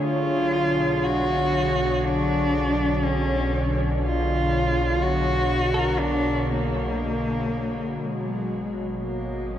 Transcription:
Already playing: analog synth pad D3 C#5, synth drone F#3 G#4, clean electric guitar E5
0.02 sub bass B1, cello F4
0.60 analog synth pad B2
1.03 cello F#4
2.04 cello D4
3.04 cello C#4
4.06 cello F4
5.02 cello F#4
5.74 clean electric guitar A#4
5.99 cello D4
6.51 cello A#3
8.01 sub bass G#1, analog synth pad F#3, cello G#3
9.02 cello A#3
9.12 analog synth pad D#5
9.52 cello C#4, analog synth pad D#4

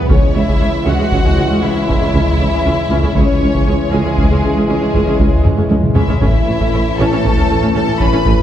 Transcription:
0.09 cello section C#2, tuba C#2, double bass section C#2, trombone section E3 G#3, viola section G#3 C#4, french horn section C#4 E4, violin section C#4 C#5, taiko
0.34 double bass section C#2, tuba C#2, cello section C#2, viola section G#3 C#4, violin section E4 E5
0.47 cello section C#2, viola section G#3 C#4, taiko
0.60 double bass section C#2, tuba C#2, cello section C#2, viola section G#3 C#4
0.86 double bass section C#2, tuba C#2, cello section C#2, viola section G#3 C#4, violin section F#4 F#5
0.99 cello section C#2, viola section G#3 C#4
1.12 tuba C#2, double bass section C#2, cello section C#2, viola section G#3 C#4, taiko
1.25 cello section C#2, viola section G#3 C#4, taiko low
1.37 tuba C#2, double bass section C#2, cello section C#2, viola section G#3 C#4
1.50 cello section C#2, viola section G#3 C#4
1.61 tuba C#2, double bass section C#2, cello section C#2, viola section G#3 C#4, violin section E4 E5
1.75 cello section C#2, viola section G#3 C#4
1.88 tuba C#2, cello section C#2, double bass section C#2, viola section G#3 C#4, taiko
2.02 cello section C#2, viola section G#3 C#4
2.14 tuba C#2, cello section C#2, double bass section C#2, viola section G#3 C#4, taiko
2.27 taiko low
2.39 tuba C#2, cello section C#2, double bass section C#2, viola section G#3 C#4
2.51 cello section C#2, viola section G#3 C#4
2.65 tuba C#2, cello section C#2, double bass section C#2, viola section G#3 C#4, taiko low
2.90 cello section C#2, tuba C#2, double bass section C#2, viola section G#3 C#4
3.04 cello section C#2, viola section G#3 C#4, taiko low
3.16 tuba C#2, cello section C#2, double bass section C#2, trombone section E3 G#3, viola section G#3 C#4, violin section C#4 C#5, french horn section C#4 E4, taiko
3.42 cello section C#2, tuba C#2, double bass section C#2, viola section G#3 C#4
3.55 cello section C#2, viola section G#3 C#4, taiko
3.66 cello section C#2, tuba C#2, double bass section C#2, viola section G#3 C#4
3.92 cello section C#2, tuba C#2, double bass section C#2, violin section G#3 G#4, viola section G#3 C#4
4.05 cello section C#2, viola section G#3 C#4
4.18 tuba C#2, cello section C#2, double bass section C#2, viola section G#3 C#4, taiko
4.31 cello section C#2, viola section G#3 C#4, taiko low
4.44 cello section C#2, tuba C#2, double bass section C#2, viola section G#3 C#4
4.56 cello section C#2, viola section G#3 C#4
4.68 tuba C#2, cello section C#2, double bass section C#2, violin section G#3 G#4, viola section G#3 C#4
4.82 cello section C#2, viola section G#3 C#4
4.94 cello section C#2, tuba C#2, double bass section C#2, viola section G#3 C#4, taiko
5.07 cello section C#2, viola section G#3 C#4
5.19 cello section C#2, double bass section C#2, tuba C#2, viola section G#3 C#4, taiko
5.33 taiko low
5.44 cello section C#2, tuba C#2, double bass section C#2, viola section G#3 C#4, taiko low-mid
5.58 cello section C#2, viola section G#3 C#4, taiko low-mid
5.69 tuba C#2, cello section C#2, double bass section C#2, viola section G#3 C#4, taiko high
5.84 taiko mid
5.94 tuba C#2, cello section C#2, double bass section C#2, viola section G#3 C#4, violin section E4 E5, taiko low-mid
6.08 cello section C#2, viola section G#3 C#4, taiko low
6.21 tuba A1, double bass section A1, cello section A2, trombone section E3 A3, viola section A3 C#4, french horn section C#4 E4, violin section E4 E5, taiko
6.47 tuba A1, double bass section A1, cello section A2, viola section A3 C#4
6.60 cello section A2, viola section A3 C#4, taiko
6.73 tuba A1, double bass section A1, cello section A2, viola section A3 C#4
6.98 tuba A1, double bass section A1, cello section A2, viola section A3 C#4, violin section A4 A5
7.13 cello section A2, viola section A3 C#4
7.24 tuba A1, double bass section A1, cello section A2, viola section A3 C#4, taiko
7.37 cello section A2, viola section A3 C#4, taiko low
7.50 tuba A1, double bass section A1, cello section A2, viola section A3 C#4
7.62 cello section A2, viola section A3 C#4
7.73 tuba A1, double bass section A1, cello section A2, viola section A3 C#4, violin section A4 A5
7.88 cello section A2, viola section A3 C#4
8.00 tuba A1, double bass section A1, cello section A2, viola section A3 C#4, violin section B4 B5, taiko
8.13 cello section A2, viola section A3 C#4
8.25 tuba A1, double bass section A1, cello section A2, viola section A3 C#4, taiko
8.39 taiko low

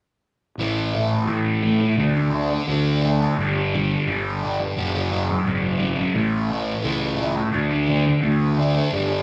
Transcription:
0.58 fingered electric bass A1, distorted electric guitar A2 E3 A3
0.94 distorted electric guitar A2 E3 A3
1.28 fingered electric bass A2, distorted electric guitar A2 E3 A3
1.62 distorted electric guitar A2 E3 A3
1.80 muted distorted electric guitar stroke
1.97 fingered electric bass D2, distorted electric guitar D3 A3 D4
2.16 distorted electric guitar A3 D4
2.31 distorted electric guitar D3 A3 D4
2.51 muted distorted electric guitar stroke
2.67 fingered electric bass D2, distorted electric guitar D3 A3 D4
3.02 distorted electric guitar D3 A3 D4
3.21 distorted electric guitar A3 D4
3.37 fingered electric bass G1, distorted electric guitar G2 D3 G3
3.73 distorted electric guitar G2 D3 G3
4.07 fingered electric bass G1, distorted electric guitar G2 D3 G3
4.42 distorted electric guitar G2 D3 G3
4.59 muted distorted electric guitar stroke
4.76 fingered electric bass F#1, distorted electric guitar F#2 C#3 F#3
4.94 distorted electric guitar C#3 F#3
5.11 distorted electric guitar F#2 C#3 F#3
5.29 muted distorted electric guitar stroke
5.45 fingered electric bass G#1, distorted electric guitar F#2 C#3 F#3
5.79 distorted electric guitar F#2 C#3 F#3
5.97 distorted electric guitar C#3 F#3
6.14 fingered electric bass A1, distorted electric guitar A2 E3 A3
6.50 distorted electric guitar A2 E3 A3
6.83 fingered electric bass C#2, distorted electric guitar A2 E3 A3
7.19 distorted electric guitar A2 E3 A3
7.36 muted distorted electric guitar stroke
7.52 fingered electric bass D2, distorted electric guitar D3 A3 D4
7.71 distorted electric guitar A3 D4
7.88 distorted electric guitar D3 A3 D4
8.07 muted distorted electric guitar stroke
8.22 fingered electric bass D2, distorted electric guitar D3 A3 D4
8.57 distorted electric guitar D3 A3 D4
8.74 distorted electric guitar A3 D4
8.91 fingered electric bass G1, distorted electric guitar G2 D3 G3

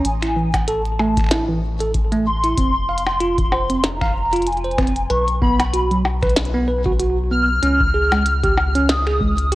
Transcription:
0.05 analog synth bass A1, soft synth lead G#5, closed hi-hat
0.22 tine electric piano E4, finger snap, closed hi-hat
0.36 tine electric piano E3
0.54 finger snap, kick, closed hi-hat, percussion blips
0.68 tine electric piano A4, soft synth lead A5, closed hi-hat
0.86 closed hi-hat
1.00 tine electric piano A3, percussion blips
1.17 finger snap, kick, closed hi-hat
1.20 finger snap
1.24 finger snap
1.26 finger snap
1.29 tine electric piano E4, finger snap, snare, closed hi-hat
1.49 tine electric piano E3
1.80 tine electric piano A4, closed hi-hat
1.94 kick, closed hi-hat
2.12 tine electric piano A3, closed hi-hat
2.26 soft synth lead C6
2.44 tine electric piano E4, closed hi-hat
2.57 analog synth bass F1, tine electric piano C4, kick, closed hi-hat
2.89 tine electric piano F5
2.98 closed hi-hat
3.07 finger snap, percussion blips
3.21 tine electric piano F4, closed hi-hat
3.38 kick, closed hi-hat
3.52 tine electric piano C5, percussion blips
3.70 tine electric piano C4, closed hi-hat
3.84 soft synth lead A#5, snare, closed hi-hat
4.01 tine electric piano F5, finger snap, kick
4.33 tine electric piano F4, closed hi-hat
4.36 closed hi-hat
4.42 closed hi-hat
4.47 soft synth lead G#5, closed hi-hat
4.53 closed hi-hat
4.57 closed hi-hat
4.65 tine electric piano C5, closed hi-hat
4.72 closed hi-hat
4.78 tine electric piano C4, finger snap, kick, closed hi-hat, percussion blips
4.87 closed hi-hat
4.96 closed hi-hat
5.10 analog synth bass B1, tine electric piano B4, soft synth lead C#6, closed hi-hat
5.28 closed hi-hat
5.42 tine electric piano B3, soft synth lead B5, kick
5.59 finger snap, closed hi-hat, percussion blips
5.73 tine electric piano F#4, closed hi-hat
5.91 tine electric piano F#3, closed hi-hat
6.05 percussion blips
6.22 tine electric piano B4, finger snap, kick, closed hi-hat
6.29 closed hi-hat
6.36 snare, closed hi-hat
6.45 closed hi-hat
6.54 tine electric piano B3
6.68 tine electric piano B4
6.86 tine electric piano F#4, kick
7.00 tine electric piano F#4, closed hi-hat
7.31 tine electric piano B3, soft synth lead F6
7.63 analog synth bass C#2, tine electric piano C#4, closed hi-hat
7.80 kick
7.94 tine electric piano G#4
8.12 tine electric piano G#3, finger snap, closed hi-hat, percussion blips
8.26 closed hi-hat
8.44 tine electric piano G4, kick, closed hi-hat
8.57 percussion blips
8.75 tine electric piano C#4, closed hi-hat
8.89 soft synth lead D#6, snare, closed hi-hat
9.07 tine electric piano G#4, finger snap
9.21 tine electric piano G#3, kick
9.38 closed hi-hat

